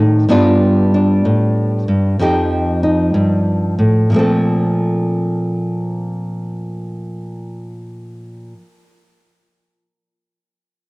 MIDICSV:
0, 0, Header, 1, 2, 480
1, 0, Start_track
1, 0, Key_signature, -2, "major"
1, 0, Tempo, 952079
1, 138, Time_signature, 4, 2, 24, 8
1, 5492, End_track
2, 0, Start_track
2, 0, Title_t, "Nylon-string guitar"
2, 0, Program_c, 0, 24
2, 0, Note_on_c, 0, 45, 57
2, 0, Note_on_c, 0, 51, 58
2, 0, Note_on_c, 0, 63, 56
2, 0, Note_on_c, 0, 67, 46
2, 0, Note_on_c, 0, 70, 66
2, 125, Note_off_c, 0, 67, 0
2, 128, Note_off_c, 0, 63, 0
2, 131, Note_off_c, 0, 70, 0
2, 142, Note_off_c, 0, 45, 0
2, 144, Note_on_c, 0, 43, 69
2, 145, Note_off_c, 0, 51, 0
2, 147, Note_on_c, 0, 55, 57
2, 149, Note_on_c, 0, 59, 59
2, 152, Note_on_c, 0, 62, 59
2, 158, Note_on_c, 0, 65, 66
2, 466, Note_off_c, 0, 62, 0
2, 475, Note_on_c, 0, 62, 55
2, 621, Note_off_c, 0, 43, 0
2, 630, Note_on_c, 0, 45, 56
2, 946, Note_off_c, 0, 45, 0
2, 949, Note_on_c, 0, 43, 52
2, 1083, Note_off_c, 0, 55, 0
2, 1085, Note_off_c, 0, 59, 0
2, 1086, Note_off_c, 0, 62, 0
2, 1102, Note_off_c, 0, 43, 0
2, 1106, Note_on_c, 0, 41, 67
2, 1108, Note_off_c, 0, 65, 0
2, 1110, Note_on_c, 0, 53, 51
2, 1116, Note_on_c, 0, 63, 61
2, 1122, Note_on_c, 0, 67, 66
2, 1421, Note_off_c, 0, 63, 0
2, 1427, Note_on_c, 0, 63, 52
2, 1581, Note_off_c, 0, 41, 0
2, 1584, Note_on_c, 0, 43, 54
2, 1903, Note_off_c, 0, 43, 0
2, 1909, Note_on_c, 0, 45, 54
2, 2042, Note_off_c, 0, 63, 0
2, 2045, Note_off_c, 0, 53, 0
2, 2051, Note_off_c, 0, 67, 0
2, 2062, Note_off_c, 0, 45, 0
2, 2067, Note_on_c, 0, 46, 57
2, 2076, Note_on_c, 0, 53, 55
2, 2089, Note_on_c, 0, 57, 56
2, 2098, Note_on_c, 0, 60, 48
2, 2111, Note_on_c, 0, 69, 49
2, 4297, Note_off_c, 0, 46, 0
2, 4306, Note_off_c, 0, 53, 0
2, 4318, Note_off_c, 0, 57, 0
2, 4328, Note_off_c, 0, 60, 0
2, 4341, Note_off_c, 0, 69, 0
2, 5492, End_track
0, 0, End_of_file